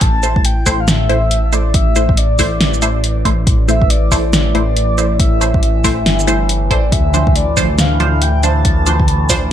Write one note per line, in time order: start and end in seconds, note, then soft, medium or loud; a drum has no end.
0.01 0.65 A1 loud
0.01 9.52 A2 medium
0.01 9.52 E3 medium
0.01 0.47 A5 loud
0.01 kick loud
0.01 closed hi-hat medium
0.23 0.35 A3 medium
0.23 0.35 E4 medium
0.23 0.35 C5 medium
0.23 closed hi-hat medium
0.23 shaker medium
0.36 kick loud
0.45 0.82 G5 loud
0.45 closed hi-hat medium
0.66 1.08 A1 loud
0.66 0.78 A3 loud
0.66 0.78 E4 medium
0.66 0.79 C5 loud
0.66 kick medium
0.66 open hi-hat loud
0.66 shaker medium
0.80 0.88 F5 medium
0.88 1.55 E5 loud
0.88 snare loud
0.88 closed hi-hat medium
0.88 shaker medium
1.09 1.94 A1 loud
1.09 1.17 A3 medium
1.09 1.17 E4 medium
1.09 1.17 C5 medium
1.09 closed hi-hat medium
1.31 closed hi-hat medium
1.52 1.60 A3 medium
1.52 1.60 E4 medium
1.52 1.60 C5 medium
1.52 1.76 D5 medium
1.52 closed hi-hat medium
1.52 shaker medium
1.74 2.19 E5 loud
1.74 kick loud
1.74 closed hi-hat medium
1.96 2.59 A1 loud
1.96 2.08 A3 medium
1.96 2.08 E4 medium
1.96 2.08 C5 medium
1.96 closed hi-hat medium
1.96 shaker medium
2.09 kick loud
2.17 3.26 D5 medium
2.17 closed hi-hat medium
2.39 2.51 A3 loud
2.39 2.51 E4 medium
2.39 2.51 C5 loud
2.39 kick medium
2.39 open hi-hat medium
2.39 shaker medium
2.60 3.24 A1 loud
2.60 snare loud
2.60 closed hi-hat medium
2.74 shaker soft
2.82 2.90 A3 medium
2.82 2.90 E4 medium
2.82 2.90 C5 medium
2.82 closed hi-hat medium
2.82 shaker medium
3.04 closed hi-hat medium
3.25 3.45 A1 loud
3.25 3.33 A3 medium
3.25 3.33 E4 medium
3.25 3.33 C5 medium
3.25 kick medium
3.25 closed hi-hat medium
3.47 4.10 A1 loud
3.47 kick loud
3.47 closed hi-hat medium
3.68 3.81 A3 medium
3.68 3.81 E4 medium
3.68 3.81 C5 medium
3.68 3.92 E5 loud
3.68 closed hi-hat medium
3.68 shaker medium
3.82 kick loud
3.90 4.33 D5 loud
3.90 closed hi-hat medium
4.11 4.53 A1 medium
4.11 4.24 A3 loud
4.11 4.24 E4 medium
4.11 4.24 C5 loud
4.11 kick medium
4.11 open hi-hat medium
4.11 shaker medium
4.33 5.16 D5 loud
4.33 snare loud
4.33 closed hi-hat medium
4.33 shaker medium
4.55 5.40 A1 loud
4.55 4.62 A3 medium
4.55 4.62 E4 medium
4.55 4.62 C5 medium
4.55 closed hi-hat medium
4.76 closed hi-hat medium
4.98 5.06 A3 medium
4.98 5.06 E4 medium
4.98 5.06 C5 medium
4.98 closed hi-hat medium
4.98 shaker soft
5.20 5.60 E5 loud
5.20 kick loud
5.20 closed hi-hat medium
5.41 6.04 A1 medium
5.41 5.53 A3 medium
5.41 5.53 E4 medium
5.41 5.53 C5 medium
5.41 closed hi-hat medium
5.41 shaker medium
5.54 kick loud
5.63 6.45 E5 loud
5.63 closed hi-hat medium
5.84 5.97 A3 medium
5.84 5.96 E4 medium
5.84 5.97 C5 loud
5.84 kick medium
5.84 open hi-hat medium
5.84 shaker medium
6.06 6.69 G1 loud
6.06 snare loud
6.06 closed hi-hat medium
6.19 shaker medium
6.27 6.40 A3 medium
6.27 6.40 E4 medium
6.27 6.40 C5 loud
6.27 closed hi-hat medium
6.27 shaker medium
6.49 closed hi-hat medium
6.71 6.91 A1 loud
6.71 6.83 A3 medium
6.71 6.83 E4 medium
6.71 6.83 C5 loud
6.71 6.94 D5 medium
6.71 kick medium
6.71 closed hi-hat medium
6.92 7.56 D2 loud
6.92 7.37 E5 loud
6.92 kick loud
6.92 closed hi-hat medium
7.14 7.26 F3 medium
7.14 7.26 D4 medium
7.14 7.26 C5 medium
7.14 closed hi-hat soft
7.14 shaker medium
7.27 kick loud
7.36 7.80 D5 medium
7.36 closed hi-hat medium
7.57 7.99 D2 loud
7.57 7.69 F3 loud
7.57 7.69 D4 medium
7.57 7.69 C5 loud
7.57 kick medium
7.57 open hi-hat medium
7.57 shaker medium
7.79 8.24 F5 loud
7.79 snare loud
7.79 closed hi-hat medium
7.79 shaker medium
8.00 8.85 D2 loud
8.00 8.08 F3 medium
8.00 8.08 D4 medium
8.00 8.08 C5 medium
8.00 closed hi-hat medium
8.22 8.45 G5 loud
8.22 closed hi-hat medium
8.43 8.51 F3 medium
8.43 8.51 D4 medium
8.43 8.51 C5 medium
8.43 9.30 A5 loud
8.43 closed hi-hat medium
8.43 shaker medium
8.65 kick loud
8.65 closed hi-hat medium
8.86 9.50 D2 medium
8.86 8.99 F3 medium
8.86 8.99 D4 medium
8.86 8.99 C5 medium
8.86 closed hi-hat soft
8.86 shaker medium
9.00 kick loud
9.08 closed hi-hat medium
9.29 9.42 F3 loud
9.29 9.42 D4 medium
9.29 9.42 C5 loud
9.29 kick medium
9.29 open hi-hat medium
9.29 shaker medium